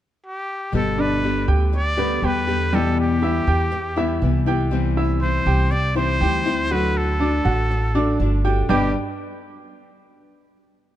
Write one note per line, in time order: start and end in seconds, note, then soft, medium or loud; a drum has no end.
0.26 0.71 G4 medium
0.72 1.44 G1 medium
0.72 1.22 B2 medium
0.72 1.21 D3 medium
0.72 1.22 G3 medium
0.72 1.22 B3 medium
0.72 1.23 G4 medium
0.72 1.02 A4 medium
0.98 1.39 D4 medium
0.98 1.49 B4 loud
0.98 1.39 D5 medium
1.22 1.72 D3 soft
1.22 1.72 G3 medium
1.22 1.72 B3 medium
1.22 1.73 G4 medium
1.48 2.19 D2 medium
1.48 1.89 G4 medium
1.48 1.89 G5 medium
1.72 2.27 D5 loud
1.72 muted nylon-string guitar stroke medium
1.97 2.21 D3 soft
1.97 2.22 G3 medium
1.97 2.18 B3 medium
1.97 2.22 B3 medium
1.97 2.22 G4 medium
1.97 2.19 B4 medium
2.22 3.41 E2 medium
2.22 2.47 D3 soft
2.22 2.47 G3 medium
2.22 2.47 B3 medium
2.22 2.64 G4 medium
2.22 2.46 G4 medium
2.22 2.76 B4 medium
2.22 2.64 G5 medium
2.47 2.73 D3 medium
2.47 2.72 G3 medium
2.47 2.72 B3 medium
2.47 2.71 G4 medium
2.72 3.21 B2 medium
2.72 3.21 E3 medium
2.72 3.14 G3 medium
2.72 3.22 G3 medium
2.72 3.22 B3 medium
2.72 3.22 E4 medium
2.72 3.14 G4 medium
2.72 2.99 A4 medium
3.00 4.44 G4 medium
3.22 3.71 E3 medium
3.22 3.71 G3 soft
3.22 3.71 B3 medium
3.22 3.43 E4 medium
3.22 3.72 E4 medium
3.22 3.43 E5 medium
3.47 4.18 E2 medium
3.47 3.88 G4 medium
3.47 3.88 G5 medium
3.72 muted nylon-string guitar stroke medium
3.96 4.20 E3 medium
3.96 4.21 G3 medium
3.96 4.21 B3 medium
3.96 4.21 E4 medium
3.96 4.38 E4 medium
3.96 4.38 E5 medium
4.22 5.40 C2 medium
4.22 4.46 E3 soft
4.22 4.46 G3 medium
4.22 4.46 B3 soft
4.22 4.45 E4 soft
4.46 4.70 E3 medium
4.46 4.71 G3 medium
4.46 4.71 B3 medium
4.46 4.70 E4 medium
4.46 4.88 G4 medium
4.46 4.88 G5 medium
4.71 5.20 C3 medium
4.71 5.20 E3 medium
4.71 5.20 G3 medium
4.71 5.21 C4 medium
4.71 5.21 E4 medium
4.97 5.38 E4 medium
4.97 5.38 E5 medium
5.21 5.70 E3 soft
5.21 5.70 G3 soft
5.21 5.70 C4 medium
5.21 5.71 E4 medium
5.21 5.72 C5 medium
5.46 6.17 C2 medium
5.46 5.87 G4 medium
5.46 5.87 G5 medium
5.71 5.96 D5 medium
5.71 muted nylon-string guitar stroke medium
5.95 6.19 E3 medium
5.95 6.20 G3 medium
5.95 6.20 C4 medium
5.95 6.16 C4 medium
5.95 6.19 E4 medium
5.95 6.17 C5 medium
5.95 6.74 C5 loud
6.21 7.39 D2 medium
6.21 6.45 E3 medium
6.21 6.45 G3 medium
6.21 6.45 C4 soft
6.21 6.44 E4 medium
6.21 6.61 G4 medium
6.21 6.62 G5 medium
6.46 6.70 E3 medium
6.46 6.70 G3 medium
6.46 6.70 C4 medium
6.46 6.70 E4 medium
6.70 7.19 D3 medium
6.70 7.11 F#3 medium
6.70 7.20 A3 medium
6.70 7.20 D4 medium
6.70 7.11 F#4 medium
6.70 7.20 F#4 medium
6.70 6.99 B4 medium
6.97 8.46 A4 medium
7.20 7.69 D3 soft
7.20 7.70 A3 medium
7.20 7.40 D4 medium
7.20 7.70 D4 soft
7.20 7.70 F#4 medium
7.20 7.41 D5 medium
7.45 8.16 A1 medium
7.45 7.86 F#4 medium
7.45 7.86 F#5 medium
7.71 muted nylon-string guitar stroke medium
7.95 8.19 A3 medium
7.95 8.36 D4 medium
7.95 8.19 D4 medium
7.95 8.19 F#4 medium
7.95 8.36 D5 medium
8.20 8.64 G1 medium
8.20 8.43 D3 soft
8.20 8.44 A3 soft
8.20 8.44 D4 medium
8.20 8.43 F#4 medium
8.44 8.70 A3 medium
8.44 8.69 D4 medium
8.44 8.68 F#4 medium
8.44 8.65 G4 medium
8.44 8.65 G5 medium
8.69 8.93 G1 medium
8.69 8.89 G2 medium
8.69 8.89 B2 medium
8.69 8.90 D3 medium
8.69 8.92 G3 medium
8.69 8.90 G3 medium
8.69 8.90 B3 medium
8.69 8.93 D4 medium
8.69 8.93 G4 medium
8.69 8.90 G4 medium
8.69 8.94 G4 medium
8.69 8.93 B4 medium
8.69 8.93 D5 medium
8.69 8.93 G5 medium